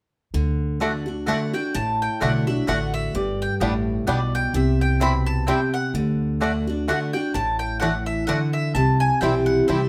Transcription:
0.34 D2 D3
0.80 D3 A3 D4 F#4 D5 F#5
1.06 D4 F#4
1.26 D3 A3 D4 F#4 D5 F#5
1.53 D4 F#4 G5
1.74 A1 A2 A5
2.02 G5
2.20 B1 D3 A3 D4 F#4 D5 F#5
2.47 D4 F#4 E5
2.67 A1 D3 A3 D4 F#4 D5 F#5
2.94 E5
3.14 G1 G2 D5
3.42 G5
3.60 A1 A2 G3 B3 D4 G4 D5 G5
4.07 B1 B2 G3 B3 D4 G4 D5 G5
4.35 G5
4.54 C2 C3 E5
4.81 G5
5.00 B2 G3 C4 E4 C5 G5 B5
5.26 A5
5.47 C3 G3 C4 E4 C5 G5
5.74 F#5
5.94 D2 D3
6.41 D3 A3 D4 F#4 D5 F#5
6.67 D4 F#4
6.88 D3 A3 D4 F#4 D5 F#5
7.13 D4 F#4 G5
7.34 A1 A2 A5
7.59 G5
7.80 E3 A3 D4 F#4 D5 F#5
8.06 E5
8.27 D3 A3 D4 F#4 D5 F#5
8.53 E5
8.75 C2 C3 A5
9.00 G#5
9.21 B1 E3 G3 C4 E4 C5 G5
9.46 F#5
9.68 C2 E3 G3 C4 E4 C5 E5 G5

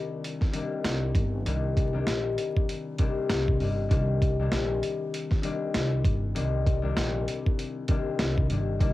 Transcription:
Already playing: C2 D#3 G3 A#3 D4
0.24 closed hi-hat
0.41 kick, snare
0.52 C2 D#3 G3 A#3 D4, closed hi-hat
0.84 C2, snare, closed hi-hat
1.15 G1, kick, closed hi-hat
1.45 C2 D#3 G3 A#3 D4, closed hi-hat
1.77 kick, closed hi-hat
1.93 C2 D#3 G3 A#3 D4
2.07 A#1, snare, closed hi-hat
2.38 closed hi-hat
2.57 kick
2.69 closed hi-hat
2.98 C2 D#3 G3 A#3 D4, kick, closed hi-hat
3.29 C2, snare, closed hi-hat
3.48 kick
3.60 G1 C2 D#3 G3 A#3 D4, open hi-hat
3.88 C2 D#3 G3 A#3 D4, kick, closed hi-hat
4.22 kick, closed hi-hat
4.39 C2 D#3 G3 A#3 D4
4.52 A#1, snare, closed hi-hat
4.83 closed hi-hat
5.14 closed hi-hat
5.31 kick, snare
5.42 C2 D#3 G3 A#3 D4, closed hi-hat
5.74 C2, snare, closed hi-hat
6.04 G1, kick, closed hi-hat
6.35 C2 D#3 G3 A#3 D4, closed hi-hat
6.67 kick, closed hi-hat
6.82 C2 D#3 G3 A#3 D4
6.97 A#1, snare, closed hi-hat
7.28 closed hi-hat
7.46 kick
7.59 closed hi-hat
7.88 C2 D#3 G3 A#3 D4, kick, closed hi-hat
8.19 C2, snare, closed hi-hat
8.38 kick
8.50 G1 C2 D#3 G3 A#3 D4, closed hi-hat
8.79 C2 D#3 G3 A#3 D4, kick, closed hi-hat

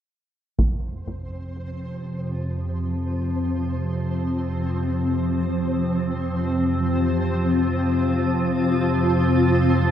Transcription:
0.57 F2 C3 F3 C4 C5, taiko
2.28 C4
5.80 F4

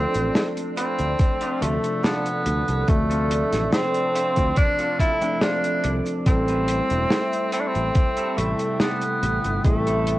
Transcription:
Already playing: F3 A3 C4 D4 F4 A4 C5 D5 A5
0.14 A1, closed hi-hat, cabasa
0.35 snare, closed hi-hat, cabasa
0.57 closed hi-hat, cabasa
0.77 C4 D4 F4 B4, closed hi-hat
0.99 D2, closed hi-hat, cabasa
1.19 kick, closed hi-hat, cabasa
1.41 C4 D4 F4 G4, closed hi-hat, cabasa
1.60 D2 C3 F3 A3 D4 A4, closed hi-hat
1.84 closed hi-hat, cabasa
2.03 B3 C4 D4 F4 A4, snare, closed hi-hat, cabasa
2.26 closed hi-hat, cabasa
2.46 D2, closed hi-hat
2.68 C2, muted clean electric guitar stroke, closed hi-hat, cabasa
2.87 D2 F3 A3 C4 D4 A4, muted clean electric guitar stroke, kick, closed hi-hat, cabasa
3.10 C4 D4 F4 A4, closed hi-hat, cabasa
3.31 closed hi-hat
3.53 A1, snare, closed hi-hat, cabasa
3.72 C4, snare, closed hi-hat, cabasa
3.94 closed hi-hat, cabasa
4.15 C4 D4 F4 C5, closed hi-hat
4.36 D2, kick, closed hi-hat, cabasa
4.56 D4, kick, closed hi-hat, cabasa
4.79 C4 D4 F4 A4, closed hi-hat, cabasa
4.99 E4 A5, kick, closed hi-hat
5.21 F3 A3 C4 D4 A4 G5, closed hi-hat, cabasa
5.41 F3 A3 C4 D4 F4 A4 C5 F5, snare, closed hi-hat, cabasa
5.64 closed hi-hat, cabasa
5.84 C2 D5, muted clean electric guitar stroke, closed hi-hat
6.05 muted clean electric guitar stroke, closed hi-hat, cabasa
6.25 A1 G3 A3 C4 E4 A4 E5 G5, muted clean electric guitar stroke, kick, closed hi-hat, cabasa
6.48 C4 E4 G4 B4, closed hi-hat, cabasa
6.68 closed hi-hat
6.90 E1, closed hi-hat, cabasa
7.10 snare, closed hi-hat, cabasa
7.32 closed hi-hat, cabasa
7.52 C4 E4 G4 A4, closed hi-hat
7.60 D4
7.68 C4
7.75 A1, closed hi-hat, cabasa
7.95 kick, closed hi-hat, cabasa
8.16 C4 E4 G4 A4, closed hi-hat, cabasa
8.36 A1 C3 G3 A3 E4 A4, closed hi-hat
8.59 closed hi-hat, cabasa
8.80 B3 C4 E4 G4 A4, snare, closed hi-hat, cabasa
9.02 closed hi-hat, cabasa
9.22 A1, muted clean electric guitar stroke, closed hi-hat
9.44 G1, muted clean electric guitar stroke, closed hi-hat, cabasa
9.63 A1 G3 A3 C4 E4 A4, muted clean electric guitar stroke, kick, closed hi-hat, cabasa
9.87 C4 E4 G4 A4, closed hi-hat, cabasa
10.07 closed hi-hat

